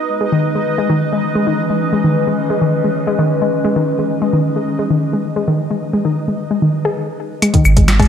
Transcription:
Already playing: B3 D#4 F#4 B4 D#5
0.09 G#3
0.19 E3 G#3
0.32 D#3
0.39 C#4
0.55 G#3
0.78 G#3
0.90 D#3
1.13 G#3
1.35 G#3
1.47 D#3
1.70 G#3
1.93 G#3
2.04 D#3
2.27 G#3
2.50 G#3
2.61 D#3
2.84 G#3
3.07 G#3
3.19 D#3
3.42 G#3
3.64 G#3
3.76 D#3
3.99 G#3
4.22 G#3
4.33 D#3
4.56 G#3
4.79 G#3
4.90 D#3
5.13 G#3
5.36 G#3
5.48 D#3
5.71 G#3
5.93 G#3
6.05 D#3
6.28 G#3
6.51 G#3
6.62 D#3
6.85 G#4
7.42 G#3, closed hi-hat, claves
7.49 D#4
7.54 D#3 B3, kick, closed hi-hat
7.65 G#1, claves, shaker
7.77 G#3, kick, closed hi-hat
7.88 snare, closed hi-hat, claves
8.00 G#3, kick, closed hi-hat, cowbell
8.02 closed hi-hat

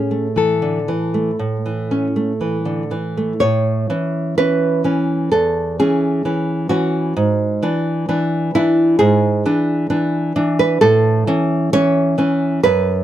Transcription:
Already playing: A2 C#4 G#4
0.11 A3
0.36 E3 A4
0.62 D3
0.88 E3
1.14 A3
1.39 A2
1.66 E3
1.91 C#4
2.16 A3
2.41 E3
2.65 D3
2.91 E3
3.17 A3
3.40 A2 C#5
3.90 E3 C#4
4.38 E3 C#4 B4
4.84 E3 C#4
5.32 E2 A4
5.80 E3 C#4 G#4
6.25 E3 C#4
6.69 E3 C#4 F#4
7.17 G#2
7.63 E3 D4
8.09 E3 D4
8.55 E3 D4 E4
8.99 G#2 G#4
9.46 E3 D4
9.90 E3 D4
10.36 E3 D4
10.59 B4
10.81 A2 A4
11.27 E3 C#4
11.73 E3 C#4 C#5
12.18 E3 C#4
12.63 F#2 B4

